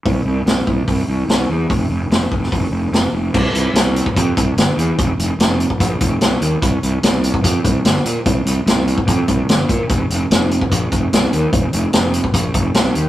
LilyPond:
<<
  \new Staff \with { instrumentName = "Fingered electric bass" } { \clef bass \time 4/4 \key f \major \tempo 4 = 146 c,8 c,8 c,8 c,8 c,8 c,8 c,8 e,8 | f,,8 f,,8 f,,8 f,,8 f,,8 f,,8 f,,8 f,,8 | c,8 c,8 c,4 f,8 c,8 g,,8 e,8 | f,,8 f,,8 f,,4 bes,,8 f,,8 c,8 ees,8 |
c,8 c,8 c,4 f,8 c,8 g,,8 bes,8 | c,8 c,8 c,4 f,8 c,8 g,,8 bes,8 | f,,8 f,,8 f,,4 bes,,8 f,,8 c,8 ees,8 | f,,8 f,,8 f,,4 bes,,8 f,,8 c,8 ees,8 | }
  \new DrumStaff \with { instrumentName = "Drums" } \drummode { \time 4/4 <hho bd>4 <hho sn>8 bd8 <hho bd>4 <hho sn>4 | <hho bd>4 <hho sn>8 bd16 sn16 <hho bd>4 <hho sn>4 | <cymc bd>8 hh8 <hh sn>8 hh16 bd16 <hh bd>8 <hh bd>8 <hh sn>8 hh8 | <hh bd>8 hh8 <hh sn>8 hh16 bd16 <hh bd>8 <hh bd>8 <hh sn>8 hh8 |
<hh bd>8 hh8 <hh sn>8 hh16 bd16 <hh bd>8 <hh bd>8 <hh sn>8 hh8 | <hh bd>8 hh8 <hh sn>8 hh16 bd16 <hh bd>8 <hh bd>8 <hh sn>8 <hh bd>8 | <hh bd>8 hh8 <hh sn>8 hh16 bd16 <hh bd>8 <hh bd>8 <hh sn>8 hh8 | <hh bd>8 hh8 <hh sn>8 hh16 bd16 <hh bd>8 <hh bd>8 <hh sn>8 hh8 | }
>>